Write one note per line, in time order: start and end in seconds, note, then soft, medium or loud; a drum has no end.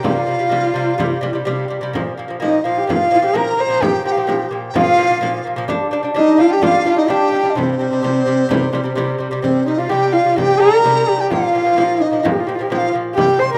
0.03 0.23 C3 medium
0.03 0.24 G3 medium
0.03 1.43 F4 medium
0.03 1.46 F5 medium
0.03 frame drum medium
0.27 0.37 C3 medium
0.27 0.38 G3 medium
0.27 frame drum soft
0.39 0.48 C3 medium
0.39 0.49 G3 medium
0.49 0.70 C3 medium
0.49 0.71 G3 loud
0.49 frame drum medium
0.74 0.94 C3 medium
0.74 0.94 G3 medium
0.74 frame drum soft
0.98 1.17 C3 loud
0.98 1.18 G3 loud
0.98 frame drum medium
1.21 1.31 C3 medium
1.21 1.32 G3 loud
1.21 frame drum medium
1.33 1.43 C3 medium
1.33 1.44 G3 medium
1.45 1.64 C3 loud
1.45 1.65 G3 loud
1.45 frame drum medium
1.68 1.78 C3 medium
1.68 1.79 G3 medium
1.68 frame drum soft
1.81 1.91 C3 medium
1.81 1.92 G3 medium
1.93 2.12 A#2 medium
1.93 2.13 F3 loud
1.93 frame drum medium
2.18 2.26 A#2 medium
2.18 2.27 F3 medium
2.18 frame drum soft
2.28 2.38 A#2 medium
2.28 2.39 F3 medium
2.40 2.59 A#2 medium
2.40 2.60 F3 medium
2.40 2.64 D#4 medium
2.40 2.65 D#5 medium
2.40 frame drum medium
2.64 2.83 A#2 medium
2.64 2.83 F3 medium
2.64 2.80 F4 medium
2.64 2.87 F5 medium
2.64 frame drum soft
2.78 2.92 G4 medium
2.87 3.06 A#2 medium
2.87 3.07 F3 loud
2.87 3.13 F4 medium
2.87 3.37 F5 medium
2.87 frame drum medium
3.10 3.20 A#2 medium
3.10 3.21 F3 medium
3.10 3.23 F4 medium
3.22 3.32 A#2 medium
3.22 3.32 F3 medium
3.22 3.38 G4 medium
3.34 3.53 A#2 medium
3.34 3.53 F3 loud
3.34 3.62 A#4 medium
3.34 3.82 A#5 medium
3.34 frame drum medium
3.56 3.66 A#2 medium
3.56 3.67 F3 medium
3.56 frame drum soft
3.61 3.85 C5 medium
3.68 3.78 A#2 medium
3.68 3.79 F3 medium
3.81 4.00 A#2 medium
3.81 4.01 F3 medium
3.81 4.06 G4 medium
3.81 4.04 G5 medium
3.81 frame drum medium
4.04 4.14 A#2 medium
4.04 4.14 F3 medium
4.04 4.49 G4 medium
4.04 4.13 G5 medium
4.04 frame drum soft
4.11 4.25 A#2 medium
4.11 4.21 F5 medium
4.17 4.26 F3 medium
4.17 4.52 G5 medium
4.27 4.46 A#2 medium
4.27 4.47 F3 loud
4.27 frame drum medium
4.51 4.70 A#2 medium
4.51 4.71 F3 medium
4.51 frame drum soft
4.69 4.78 G5 medium
4.74 4.93 A#2 medium
4.74 4.94 F3 loud
4.74 5.42 F4 loud
4.74 5.46 F5 loud
4.74 frame drum medium
4.97 5.07 A#2 medium
4.97 5.08 F3 medium
5.09 5.19 A#2 medium
5.09 5.20 F3 medium
5.21 5.40 A#2 medium
5.21 5.41 F3 loud
5.21 frame drum medium
5.45 5.54 A#2 medium
5.45 5.56 F3 medium
5.45 frame drum soft
5.56 5.66 A#2 medium
5.56 5.67 F3 loud
5.68 5.87 G3 loud
5.68 5.88 D4 loud
5.68 frame drum medium
5.91 6.01 G3 medium
5.91 6.02 D4 medium
5.91 frame drum soft
6.03 6.13 G3 medium
6.03 6.14 D4 medium
6.14 6.34 G3 medium
6.14 6.35 D4 loud
6.14 6.43 D#4 loud
6.14 6.39 D#5 medium
6.14 frame drum medium
6.38 6.57 G3 medium
6.38 6.58 D4 medium
6.38 6.55 F4 medium
6.38 6.52 F5 medium
6.38 frame drum soft
6.50 6.64 G4 medium
6.50 6.64 G5 medium
6.62 6.81 G3 medium
6.62 6.82 D4 medium
6.62 6.86 F4 loud
6.62 6.97 F5 medium
6.62 frame drum medium
6.85 6.95 G3 medium
6.85 6.96 D4 medium
6.85 7.00 F4 medium
6.96 7.06 G3 medium
6.96 7.07 D4 medium
6.96 7.11 D#4 medium
6.96 7.11 D#5 medium
7.08 7.28 G3 medium
7.08 7.29 D4 loud
7.08 7.58 G4 loud
7.08 7.51 G5 medium
7.08 frame drum soft
7.32 7.42 G3 medium
7.32 7.43 D4 medium
7.32 frame drum soft
7.43 7.53 G3 medium
7.43 7.54 D4 medium
7.50 7.57 D#5 medium
7.55 7.75 C3 medium
7.55 7.76 G3 medium
7.55 9.21 C4 medium
7.55 9.20 C5 medium
7.55 frame drum medium
7.79 7.89 C3 medium
7.79 7.90 G3 medium
7.79 frame drum soft
7.90 8.00 C3 medium
7.90 8.02 G3 medium
8.03 8.22 C3 medium
8.03 8.23 G3 medium
8.03 frame drum soft
8.26 8.45 C3 medium
8.26 8.46 G3 medium
8.26 frame drum soft
8.49 8.68 C3 loud
8.49 8.69 G3 loud
8.49 frame drum medium
8.73 8.83 C3 medium
8.73 8.83 G3 medium
8.73 frame drum medium
8.84 8.94 C3 medium
8.84 8.95 G3 medium
8.95 9.15 C3 loud
8.95 9.16 G3 loud
8.95 frame drum medium
9.18 9.29 C3 medium
9.18 9.30 G3 medium
9.18 frame drum soft
9.31 9.41 C3 medium
9.31 9.42 G3 medium
9.42 9.62 C3 medium
9.42 9.63 G3 medium
9.42 9.65 C4 medium
9.42 9.67 C5 medium
9.42 frame drum medium
9.66 9.76 C3 medium
9.66 9.77 G3 medium
9.66 9.79 D#4 medium
9.66 9.80 D#5 medium
9.66 frame drum soft
9.77 9.88 C3 medium
9.77 9.89 G3 medium
9.77 9.91 F4 medium
9.77 9.92 F5 medium
9.77 frame drum soft
9.89 10.18 C3 medium
9.89 10.19 G3 loud
9.89 10.15 G4 loud
9.89 10.14 G5 medium
9.89 frame drum soft
10.12 10.38 F4 medium
10.12 10.37 F5 medium
10.25 10.35 C3 medium
10.25 10.35 G3 medium
10.36 10.56 C3 medium
10.36 10.57 G3 medium
10.36 10.61 G4 loud
10.36 10.62 G5 medium
10.36 frame drum medium
10.59 10.70 C3 medium
10.59 10.71 G3 medium
10.59 11.10 A#4 loud
10.59 11.22 A#5 medium
10.72 10.82 C3 medium
10.72 10.82 G3 medium
10.72 frame drum soft
10.84 11.03 C3 loud
10.84 11.04 G3 medium
10.84 frame drum soft
11.07 11.26 C3 medium
11.07 11.27 G3 medium
11.07 11.20 G4 medium
11.20 11.32 G4 medium
11.20 11.30 G5 medium
11.30 11.50 A#2 medium
11.30 11.51 F3 medium
11.30 12.02 F4 loud
11.30 12.03 F5 medium
11.30 frame drum medium
11.53 11.63 A#2 medium
11.53 11.64 F3 medium
11.53 frame drum soft
11.65 11.75 A#2 medium
11.65 11.76 F3 medium
11.65 frame drum soft
11.76 12.05 A#2 medium
11.76 12.06 F3 loud
11.76 frame drum medium
12.00 12.25 D#4 medium
12.00 12.25 D#5 medium
12.11 12.21 A#2 medium
12.11 12.22 F3 medium
12.23 12.43 A#2 medium
12.23 12.44 F3 loud
12.23 12.33 F4 medium
12.23 frame drum medium
12.32 12.42 G4 medium
12.40 12.48 F4 medium
12.47 12.57 A#2 medium
12.47 12.58 F3 medium
12.47 12.57 G4 medium
12.55 12.69 A#2 medium
12.55 12.64 F4 medium
12.60 12.70 F3 medium
12.60 12.73 G4 medium
12.60 frame drum soft
12.70 12.90 A#2 medium
12.70 12.91 F3 loud
12.70 12.95 F4 medium
12.70 12.78 G5 medium
12.70 frame drum medium
12.77 12.94 F5 medium
12.93 13.13 A#2 medium
12.93 13.14 F3 medium
13.15 13.37 C3 medium
13.15 13.37 G3 medium
13.15 13.41 G4 loud
13.15 frame drum medium
13.19 13.42 G5 medium
13.39 13.51 C3 medium
13.39 13.52 G3 medium
13.39 13.52 C5 medium
13.39 13.52 C6 medium
13.39 frame drum soft
13.52 13.58 C3 medium
13.52 13.58 G3 medium
13.52 13.58 A#4 loud
13.52 13.58 A#5 medium
13.52 frame drum soft